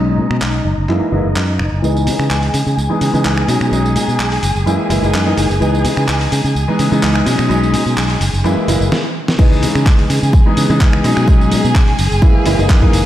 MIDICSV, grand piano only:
0, 0, Header, 1, 2, 480
1, 0, Start_track
1, 0, Tempo, 472441
1, 1859, Time_signature, 4, 2, 24, 8
1, 13267, End_track
2, 0, Start_track
2, 0, Title_t, "Grand piano"
2, 0, Program_c, 0, 0
2, 0, Note_on_c, 0, 54, 83
2, 0, Note_on_c, 0, 56, 77
2, 0, Note_on_c, 0, 61, 74
2, 0, Note_on_c, 0, 63, 92
2, 643, Note_off_c, 0, 54, 0
2, 646, Note_off_c, 0, 56, 0
2, 648, Note_off_c, 0, 61, 0
2, 651, Note_off_c, 0, 63, 0
2, 900, Note_on_c, 0, 52, 75
2, 902, Note_on_c, 0, 56, 68
2, 906, Note_on_c, 0, 58, 70
2, 908, Note_on_c, 0, 64, 84
2, 1113, Note_off_c, 0, 52, 0
2, 1114, Note_off_c, 0, 56, 0
2, 1116, Note_off_c, 0, 58, 0
2, 1117, Note_off_c, 0, 64, 0
2, 1134, Note_on_c, 0, 52, 77
2, 1137, Note_on_c, 0, 56, 73
2, 1139, Note_on_c, 0, 58, 74
2, 1141, Note_on_c, 0, 64, 89
2, 1264, Note_off_c, 0, 52, 0
2, 1265, Note_off_c, 0, 56, 0
2, 1266, Note_off_c, 0, 58, 0
2, 1267, Note_off_c, 0, 64, 0
2, 1850, Note_on_c, 0, 52, 76
2, 1856, Note_on_c, 0, 56, 70
2, 1861, Note_on_c, 0, 59, 69
2, 1867, Note_on_c, 0, 63, 83
2, 2913, Note_off_c, 0, 52, 0
2, 2916, Note_off_c, 0, 56, 0
2, 2918, Note_off_c, 0, 59, 0
2, 2921, Note_off_c, 0, 63, 0
2, 2939, Note_on_c, 0, 52, 74
2, 2943, Note_on_c, 0, 56, 65
2, 2948, Note_on_c, 0, 59, 67
2, 2950, Note_on_c, 0, 63, 79
2, 3153, Note_off_c, 0, 52, 0
2, 3155, Note_off_c, 0, 56, 0
2, 3157, Note_off_c, 0, 59, 0
2, 3158, Note_off_c, 0, 63, 0
2, 3184, Note_on_c, 0, 52, 87
2, 3184, Note_on_c, 0, 56, 78
2, 3188, Note_on_c, 0, 59, 80
2, 3191, Note_on_c, 0, 63, 97
2, 3511, Note_off_c, 0, 52, 0
2, 3511, Note_off_c, 0, 56, 0
2, 3513, Note_off_c, 0, 59, 0
2, 3514, Note_off_c, 0, 63, 0
2, 3537, Note_on_c, 0, 54, 78
2, 3538, Note_on_c, 0, 56, 71
2, 3541, Note_on_c, 0, 61, 72
2, 3544, Note_on_c, 0, 63, 86
2, 3752, Note_off_c, 0, 54, 0
2, 3752, Note_off_c, 0, 56, 0
2, 3754, Note_off_c, 0, 61, 0
2, 3755, Note_off_c, 0, 63, 0
2, 3773, Note_on_c, 0, 54, 86
2, 3779, Note_on_c, 0, 56, 78
2, 3783, Note_on_c, 0, 61, 78
2, 3790, Note_on_c, 0, 63, 94
2, 4483, Note_off_c, 0, 54, 0
2, 4486, Note_off_c, 0, 56, 0
2, 4488, Note_off_c, 0, 61, 0
2, 4491, Note_off_c, 0, 63, 0
2, 4734, Note_on_c, 0, 52, 78
2, 4735, Note_on_c, 0, 56, 71
2, 4739, Note_on_c, 0, 58, 71
2, 4743, Note_on_c, 0, 64, 87
2, 4950, Note_off_c, 0, 52, 0
2, 4951, Note_off_c, 0, 56, 0
2, 4952, Note_off_c, 0, 58, 0
2, 4955, Note_off_c, 0, 64, 0
2, 4973, Note_on_c, 0, 52, 82
2, 4975, Note_on_c, 0, 56, 77
2, 4979, Note_on_c, 0, 58, 73
2, 4980, Note_on_c, 0, 64, 93
2, 5074, Note_off_c, 0, 52, 0
2, 5075, Note_off_c, 0, 56, 0
2, 5077, Note_off_c, 0, 58, 0
2, 5078, Note_off_c, 0, 64, 0
2, 5104, Note_on_c, 0, 52, 70
2, 5106, Note_on_c, 0, 56, 64
2, 5111, Note_on_c, 0, 58, 66
2, 5113, Note_on_c, 0, 63, 82
2, 5315, Note_off_c, 0, 52, 0
2, 5316, Note_off_c, 0, 56, 0
2, 5319, Note_off_c, 0, 58, 0
2, 5320, Note_off_c, 0, 63, 0
2, 5342, Note_on_c, 0, 52, 84
2, 5344, Note_on_c, 0, 56, 79
2, 5347, Note_on_c, 0, 58, 79
2, 5351, Note_on_c, 0, 63, 97
2, 5531, Note_off_c, 0, 52, 0
2, 5532, Note_off_c, 0, 56, 0
2, 5533, Note_off_c, 0, 58, 0
2, 5535, Note_off_c, 0, 63, 0
2, 5689, Note_on_c, 0, 52, 81
2, 5695, Note_on_c, 0, 56, 72
2, 5702, Note_on_c, 0, 59, 74
2, 5705, Note_on_c, 0, 63, 91
2, 6752, Note_off_c, 0, 52, 0
2, 6755, Note_off_c, 0, 56, 0
2, 6759, Note_off_c, 0, 59, 0
2, 6760, Note_off_c, 0, 63, 0
2, 6784, Note_on_c, 0, 52, 75
2, 6786, Note_on_c, 0, 56, 70
2, 6789, Note_on_c, 0, 59, 70
2, 6790, Note_on_c, 0, 63, 84
2, 6995, Note_off_c, 0, 52, 0
2, 6996, Note_off_c, 0, 56, 0
2, 6998, Note_off_c, 0, 59, 0
2, 6998, Note_off_c, 0, 63, 0
2, 7022, Note_on_c, 0, 52, 91
2, 7025, Note_on_c, 0, 56, 85
2, 7026, Note_on_c, 0, 59, 85
2, 7030, Note_on_c, 0, 63, 104
2, 7350, Note_off_c, 0, 52, 0
2, 7351, Note_off_c, 0, 56, 0
2, 7352, Note_off_c, 0, 59, 0
2, 7354, Note_off_c, 0, 63, 0
2, 7371, Note_on_c, 0, 54, 82
2, 7374, Note_on_c, 0, 56, 75
2, 7377, Note_on_c, 0, 61, 77
2, 7378, Note_on_c, 0, 63, 93
2, 7589, Note_off_c, 0, 54, 0
2, 7590, Note_off_c, 0, 56, 0
2, 7592, Note_off_c, 0, 61, 0
2, 7592, Note_off_c, 0, 63, 0
2, 7606, Note_on_c, 0, 54, 87
2, 7611, Note_on_c, 0, 56, 83
2, 7617, Note_on_c, 0, 61, 83
2, 7624, Note_on_c, 0, 63, 100
2, 8320, Note_off_c, 0, 54, 0
2, 8322, Note_off_c, 0, 56, 0
2, 8325, Note_off_c, 0, 61, 0
2, 8328, Note_off_c, 0, 63, 0
2, 8575, Note_on_c, 0, 52, 83
2, 8579, Note_on_c, 0, 56, 76
2, 8580, Note_on_c, 0, 58, 76
2, 8584, Note_on_c, 0, 64, 89
2, 8791, Note_off_c, 0, 52, 0
2, 8792, Note_off_c, 0, 56, 0
2, 8793, Note_off_c, 0, 58, 0
2, 8795, Note_off_c, 0, 64, 0
2, 8816, Note_on_c, 0, 52, 86
2, 8820, Note_on_c, 0, 56, 81
2, 8821, Note_on_c, 0, 58, 80
2, 8823, Note_on_c, 0, 64, 93
2, 8945, Note_off_c, 0, 52, 0
2, 8947, Note_off_c, 0, 56, 0
2, 8947, Note_off_c, 0, 58, 0
2, 8948, Note_off_c, 0, 64, 0
2, 9532, Note_on_c, 0, 52, 82
2, 9538, Note_on_c, 0, 56, 76
2, 9543, Note_on_c, 0, 59, 78
2, 9548, Note_on_c, 0, 63, 91
2, 10593, Note_off_c, 0, 52, 0
2, 10596, Note_off_c, 0, 56, 0
2, 10599, Note_off_c, 0, 59, 0
2, 10602, Note_off_c, 0, 63, 0
2, 10623, Note_on_c, 0, 52, 77
2, 10627, Note_on_c, 0, 56, 69
2, 10631, Note_on_c, 0, 59, 70
2, 10634, Note_on_c, 0, 63, 85
2, 10835, Note_off_c, 0, 52, 0
2, 10837, Note_off_c, 0, 56, 0
2, 10839, Note_off_c, 0, 59, 0
2, 10840, Note_off_c, 0, 63, 0
2, 10868, Note_on_c, 0, 52, 92
2, 10868, Note_on_c, 0, 56, 84
2, 10872, Note_on_c, 0, 59, 86
2, 10874, Note_on_c, 0, 63, 103
2, 11193, Note_off_c, 0, 52, 0
2, 11193, Note_off_c, 0, 56, 0
2, 11195, Note_off_c, 0, 59, 0
2, 11196, Note_off_c, 0, 63, 0
2, 11219, Note_on_c, 0, 54, 82
2, 11221, Note_on_c, 0, 56, 78
2, 11223, Note_on_c, 0, 61, 75
2, 11228, Note_on_c, 0, 63, 95
2, 11433, Note_off_c, 0, 54, 0
2, 11434, Note_off_c, 0, 56, 0
2, 11435, Note_off_c, 0, 61, 0
2, 11437, Note_off_c, 0, 63, 0
2, 11455, Note_on_c, 0, 54, 90
2, 11461, Note_on_c, 0, 56, 84
2, 11467, Note_on_c, 0, 61, 84
2, 12164, Note_off_c, 0, 54, 0
2, 12167, Note_off_c, 0, 56, 0
2, 12170, Note_off_c, 0, 61, 0
2, 12415, Note_on_c, 0, 52, 84
2, 12419, Note_on_c, 0, 56, 77
2, 12422, Note_on_c, 0, 58, 76
2, 12423, Note_on_c, 0, 64, 92
2, 12631, Note_off_c, 0, 52, 0
2, 12633, Note_off_c, 0, 56, 0
2, 12634, Note_off_c, 0, 58, 0
2, 12635, Note_off_c, 0, 64, 0
2, 12657, Note_on_c, 0, 52, 85
2, 12660, Note_on_c, 0, 56, 77
2, 12663, Note_on_c, 0, 58, 78
2, 12666, Note_on_c, 0, 64, 96
2, 12756, Note_off_c, 0, 52, 0
2, 12758, Note_off_c, 0, 56, 0
2, 12759, Note_off_c, 0, 58, 0
2, 12761, Note_off_c, 0, 64, 0
2, 12783, Note_on_c, 0, 52, 75
2, 12785, Note_on_c, 0, 56, 69
2, 12789, Note_on_c, 0, 58, 67
2, 12791, Note_on_c, 0, 63, 84
2, 12995, Note_off_c, 0, 52, 0
2, 12996, Note_off_c, 0, 56, 0
2, 12998, Note_off_c, 0, 58, 0
2, 12999, Note_off_c, 0, 63, 0
2, 13021, Note_on_c, 0, 52, 88
2, 13023, Note_on_c, 0, 56, 80
2, 13025, Note_on_c, 0, 58, 81
2, 13028, Note_on_c, 0, 63, 101
2, 13211, Note_off_c, 0, 52, 0
2, 13212, Note_off_c, 0, 56, 0
2, 13212, Note_off_c, 0, 58, 0
2, 13214, Note_off_c, 0, 63, 0
2, 13267, End_track
0, 0, End_of_file